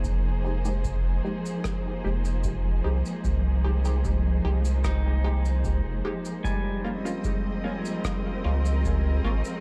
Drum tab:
SH |x--xx--xx--xx--x|x--xx--xx--xx--x|x--xx--xx--xx--x|
SD |--------r-------|--------r-------|--------r-------|
BD |o---o---o---o---|o---o---o---o---|o---o---o---o---|